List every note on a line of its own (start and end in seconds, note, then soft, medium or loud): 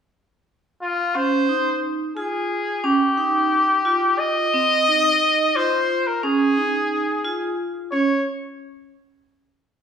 0.82 1.17 F4 medium
1.15 1.45 C#4 medium
1.15 1.83 C5 loud
1.49 2.10 D#4 medium
2.17 2.77 F4 medium
2.17 2.85 G#4 medium
2.84 3.14 C#4 medium
2.84 4.20 G4 medium
3.18 3.79 D#4 medium
3.85 4.46 F4 medium
4.19 5.58 D#5 loud
4.54 4.84 C4 medium
4.88 5.48 D#4 medium
5.55 6.16 F4 medium
5.55 6.09 C5 medium
6.07 6.23 A#4 medium
6.23 6.54 C#4 medium
6.23 7.55 G#4 medium
6.57 7.18 D#4 medium
7.24 7.85 F4 medium
7.92 8.24 C#4 medium
7.92 8.24 C#5 medium